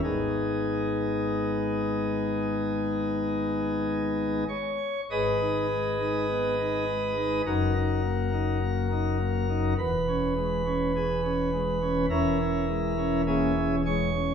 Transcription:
<<
  \new Staff \with { instrumentName = "Pipe organ" } { \time 4/4 \key gis \minor \tempo 4 = 51 << { <gis, gis b dis' gis'>2.~ <gis, gis b dis' gis'>8 cis''8 | <gis' b' dis''>2 <dis' fis' ais'>2 | b'2 <cis' e' ais'>4 <cis' e' gis'>8 cis''8 | } \\ { r1 | gis,16 dis'16 gis16 dis'16 b16 dis'16 gis16 dis'16 fis,16 dis'16 ais16 dis'16 ais16 dis'16 ais16 dis'16 | e,16 cis'16 gis16 cis'16 gis'16 cis'16 gis16 cis'16 e,16 cis'16 gis16 cis'16 ais16 cis'16 gis16 cis'16 | } >> }
  \new Staff \with { instrumentName = "Pipe organ" } { \clef bass \time 4/4 \key gis \minor gis,,2.~ gis,,8 r8 | gis,,2 fis,,2 | e,,2 e,,2 | }
>>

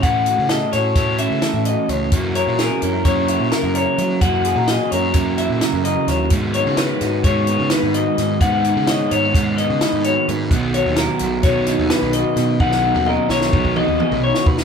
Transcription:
<<
  \new Staff \with { instrumentName = "Clean electric guitar" } { \time 9/8 \key b \major \tempo 4. = 86 fis''4 dis''8 cis''4 e''4 dis''8 cis''8 | r8 cis''8 ais'4 cis''4 ais'8 cis''4 | fis''4 dis''8 cis''4 e''4 dis''8 cis''8 | r8 cis''8 b'4 cis''4 b'8 dis''4 |
fis''4 dis''8 cis''4 dis''4 cis''8 b'8 | r8 cis''8 r4 cis''4 b'8 dis''4 | fis''4 dis''8 cis''4 dis''4 cis''8 b'8 | }
  \new Staff \with { instrumentName = "Clean electric guitar" } { \time 9/8 \key b \major << { r8 fis'8 a'8 fis'4 cis'8 a'8 fis'4 | r8 ais'8 gis'8 ais'4 e'8 ais'8 ais'4 | r8 gis'16 ais'16 gis'8 ais'4 e'8 ais'8 ais'4 | r8 dis'16 fis'16 cis''8 fis'4 b8 b'8 fis'4 |
r8 dis'16 fis'16 cis''8 dis'16 fis'8. b8 b'8 fis'4 | r8 fis'8 ais'8 fis'4 dis'8 b'8 fis'4 | r8 dis'16 fis'16 ais'8 fis'4 dis'8 gis'16 b'16 dis'16 fis'8. | } \\ { r4. a4. e4 a,8 | fis4. cis'4. cis4 fis8 | fis4. cis'4. cis4 fis8 | gis,4. gis4. dis4 gis,8 |
gis,4. gis4. dis4 gis,8 | b,4. fis4. b,4 b,8 | b,4. fis4. b,4 b,8 | } >> }
  \new Staff \with { instrumentName = "Overdriven electric guitar" } { \clef bass \time 9/8 \key b \major <a, e a cis' e'>2 <a, e a cis' e'>2~ <a, e a cis' e'>8 | <fis, cis e ais e'>2 <fis, cis e ais e'>2~ <fis, cis e ais e'>8 | <fis, cis e ais e'>2 <fis, cis e ais e'>2~ <fis, cis e ais e'>8 | <gis, dis gis b dis'>2 <gis, dis gis b dis'>2~ <gis, dis gis b dis'>8 |
<gis, dis gis b dis'>2 <gis, dis gis b dis'>2~ <gis, dis gis b dis'>8 | <b, dis fis b dis'>2 <b, dis fis b dis'>2~ <b, dis fis b dis'>8 | <b, dis fis b dis'>2 <b, dis fis b dis'>2~ <b, dis fis b dis'>8 | }
  \new Staff \with { instrumentName = "Picked electric bass" } { \clef bass \time 9/8 \key b \major a,8. cis8 r16 a,8 a,8. cis16 r16 a,8 r16 cis,8 | fis,8. ais,8 r16 fis,8 fis,8. ais,16 r16 fis,8 r16 fis8 | fis,8. ais,8 r16 fis,8 fis,8. ais,16 r16 fis,8 r16 dis,8 | gis,8. cis8 r16 gis,8 gis,8. cis16 r16 gis,8 r16 gis,8 |
gis,8. cis8 r16 gis,8 gis,8. cis16 r16 gis,8 r16 gis,8 | b,,8. dis,8 r16 b,,8 b,,8. dis,16 r16 b,,8 r16 b,8 | b,,8. dis,8 r16 b,,8 b,,8. dis,16 r16 b,,8 r16 dis,8 | }
  \new DrumStaff \with { instrumentName = "Drums" } \drummode { \time 9/8 <hh bd>8 hh8 <hh sn>8 <hh sn>8 <hh bd sn>8 hh8 <hh sn>8 hh8 hh8 | <hh bd>8 hh8 <hh sn>8 hh8 <hh bd>8 hh8 <hh sn>8 hh8 hh8 | <hh bd>8 hh8 <hh sn>8 hh8 <hh bd>8 hh8 <hh sn>8 hh8 <hh sn>8 | <hh bd>8 hh8 <hh sn>8 <hh sn>8 <hh bd>8 hh8 <hh sn>8 hh8 <hh sn>8 |
<hh bd>8 hh8 <hh sn>8 hh8 <hh bd>8 hh8 <hh sn>8 hh8 hh8 | <hh bd>8 hh8 <hh sn>8 hh8 <hh bd sn>8 <hh sn>8 <hh sn>8 hh8 <hh sn>8 | bd16 sn8 tommh16 tommh8 sn16 sn16 bd16 bd16 toml8 toml16 tomfh8 sn16 bd16 sn16 | }
>>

